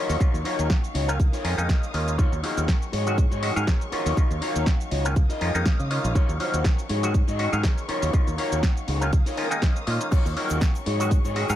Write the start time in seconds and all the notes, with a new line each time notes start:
Already playing: D#3 F#3 A#3 C#4 D#4 F4 F#4 C#5 F5 C#6
0.09 D#2, open hi-hat, cabasa
0.20 D#3 F#3 A#3 C#4 F4, kick, closed hi-hat, cabasa
0.34 D#2, closed hi-hat, cabasa
0.44 D#3 F#3 A#3 C#4 D#4 F4 F#4 C#5 F5, open hi-hat
0.59 D#2, closed hi-hat, cabasa
0.70 kick, snare, closed hi-hat, cabasa
0.84 closed hi-hat, cabasa
0.94 C#2 D#4 F4 F#4 C#5, open hi-hat
1.08 D#3 F#3 A#3 C#4 F4, closed hi-hat, cabasa
1.20 A#4 D#6, kick, closed hi-hat, cabasa
1.32 D#4 F4 A#4 C#5, open hi-hat, cabasa
1.44 F2 D#3 G#3 A#3 C#4 F4, open hi-hat
1.58 F2 D#3 G#3 A#3 C#4 D#4, closed hi-hat, cabasa
1.69 muted clean electric guitar stroke, kick, snare, closed hi-hat, cabasa
1.82 muted clean electric guitar stroke, closed hi-hat, cabasa
1.94 D#2 D#3 G#3 A#3 C#4 F4, open hi-hat
2.07 muted clean electric guitar stroke, closed hi-hat, cabasa
2.18 D#3 F#3 A#3 C#4 D#4 F4 F#4 C#5 C#6, kick, closed hi-hat, cabasa
2.32 D#2, closed hi-hat, cabasa
2.43 D#3 F#3 A#3 C#4 D#4 F4 F#4 G#4 F5, open hi-hat
2.57 D#2, closed hi-hat, cabasa
2.68 kick, snare, closed hi-hat, cabasa
2.82 closed hi-hat, cabasa
2.92 G#2 D#4 F#4 G#4 C#5, open hi-hat
3.06 D#3 F#3 G#3 C#4 F#4, closed hi-hat, cabasa
3.18 kick, closed hi-hat, cabasa
3.31 G#2 D#4 F#4 G#4 C#5, closed hi-hat, cabasa
3.42 D#3 F#3 G#3 C#4 F#4, open hi-hat
3.56 G#2 D#3 F#3 G#3 C#4 F5, closed hi-hat, cabasa
3.67 muted clean electric guitar stroke, kick, snare, closed hi-hat, cabasa
3.81 muted clean electric guitar stroke, closed hi-hat, cabasa
3.92 D#3 F#3 A#3 C#4 D#4 F4 F#4 C#5 F5, muted fingered electric bass stroke, open hi-hat
4.06 D#2, open hi-hat, cabasa
4.17 D#3 F#3 A#3 C#4 F4, kick, closed hi-hat, cabasa
4.31 D#2, closed hi-hat, cabasa
4.41 D#3 F#3 A#3 C#4 D#4 F4 F#4 C#5 F5, open hi-hat
4.55 D#2, closed hi-hat, cabasa
4.66 kick, snare, closed hi-hat, cabasa
4.80 closed hi-hat, cabasa
4.91 C#2 D#4 F4 F#4 C#5, open hi-hat
5.05 D#3 F#3 A#3 C#4 F4, closed hi-hat, cabasa
5.16 A#4 F5 D#6, kick, closed hi-hat, cabasa
5.29 D#4 F4 A#4 D#5, muted fingered electric bass stroke, open hi-hat, cabasa
5.41 F2 D#3 G#3 A#3 C#4 F4, open hi-hat
5.54 F2 D#3 G#3 A#3 C#4 D#4, closed hi-hat, cabasa
5.65 muted clean electric guitar stroke, kick, snare, closed hi-hat, cabasa
5.79 C#3, muted clean electric guitar stroke, closed hi-hat, cabasa
5.90 D#3 G#3 A#3 C#4 F4, open hi-hat
6.04 A#1, muted clean electric guitar stroke, closed hi-hat, cabasa
6.15 D#3 F#3 A#3 C#4 D#4 F4 F#4 C#5 C#6, kick, closed hi-hat, cabasa
6.29 D#2, closed hi-hat, cabasa
6.40 D#3 F#3 A#3 C#4 D#4 F4 F#4 C5 F5, open hi-hat
6.54 D#2, closed hi-hat, cabasa
6.64 kick, snare, closed hi-hat, cabasa
6.78 closed hi-hat, cabasa
6.89 G#2 D#4 F#4 G#4 C#5, open hi-hat
7.03 D#3 F#3 G#3 C#4 F#4, closed hi-hat, cabasa
7.14 kick, closed hi-hat, cabasa
7.27 G#2 D#4 F#4 G#4 D#5, closed hi-hat, cabasa
7.39 D#3 F#3 G#3 C#4 F#4, open hi-hat
7.52 G#2 D#3 F#3 G#3 C#4 F5, closed hi-hat, cabasa
7.63 muted clean electric guitar stroke, kick, snare, closed hi-hat, cabasa
7.77 muted clean electric guitar stroke, closed hi-hat, cabasa
7.88 D#3 F#3 A#3 C#4 D#4 F4 F#4 C#5 F5, muted fingered electric bass stroke, open hi-hat
8.02 D#2, open hi-hat, cabasa
8.13 D#3 F#3 A#3 C#4 F4, kick, closed hi-hat, cabasa
8.27 D#2, closed hi-hat, cabasa
8.37 D#3 F#3 A#3 C#4 D#4 F4 F#4 C#5 F5, open hi-hat
8.52 D#2, closed hi-hat, cabasa
8.63 kick, snare, closed hi-hat, cabasa
8.77 closed hi-hat, cabasa
8.87 C#2 D#4 F4 F#4 G#4, open hi-hat
9.01 D#3 F#3 A#3 C#4 F4, closed hi-hat, cabasa
9.12 A#4 D#6, muted clean electric guitar stroke, kick, closed hi-hat, cabasa
9.26 D#4 F4 A#4 C#5, open hi-hat, cabasa
9.37 D#3 G#3 A#3 C#4 F4, open hi-hat
9.51 D#3 G#3 A#3 C#4 D#4, closed hi-hat, cabasa
9.62 muted clean electric guitar stroke, kick, snare, closed hi-hat, cabasa
9.76 muted clean electric guitar stroke, closed hi-hat, cabasa
9.87 A#2 D#3 G#3 A#3 C#4 F4, open hi-hat
10.00 muted clean electric guitar stroke, closed hi-hat, cabasa
10.11 D#3 F#3 A#3 C#4 D#4 F4 F#4 C#5 C#6, muted fingered electric bass stroke, kick, closed hi-hat, crash, cabasa, shaker
10.26 D#2, closed hi-hat, cabasa, shaker
10.36 D#3 F#3 A#3 C#4 D#4 F4 F#4 A#4 F5, open hi-hat
10.50 D#2, closed hi-hat, cabasa, shaker
10.61 kick, snare, closed hi-hat, cabasa, shaker
10.75 closed hi-hat, cabasa, shaker
10.86 G#2 D#4 F#4 G#4 C#5, open hi-hat
10.99 D#3 F#3 G#3 C#4 F#4, closed hi-hat, cabasa, shaker
11.11 kick, closed hi-hat, cabasa, shaker
11.24 G#2 D#4 F#4 G#4 C#5, closed hi-hat, cabasa, shaker
11.35 D#3 F#3 G#3 C#4 F#4, open hi-hat
11.49 G#2 D#3 F#3 G#3 C#4 F5, closed hi-hat, cabasa, shaker